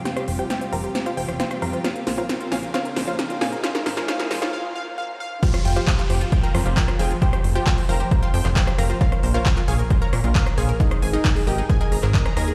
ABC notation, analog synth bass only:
X:1
M:4/4
L:1/16
Q:1/4=134
K:Fm
V:1 name="Analog synth bass" clef=bass
z2 F,,, z3 F,,, z3 F,,, F,,, z2 F,, z | z2 B,,, z3 B,,, z3 B,,, B,,, z2 B,, z | z2 A,,, z3 A,,, z8 z | z2 F,,, z3 F,,, z3 F,, F,,, z2 F,,, z |
z2 F,,, z3 F,,, z3 F,, F,,, z2 F,,, z | z2 B,,, z3 B,,, z3 B,, B,,, z2 B,,, z | z2 A,,, z3 A,,, z3 A,,, A,,, z2 E,, z |]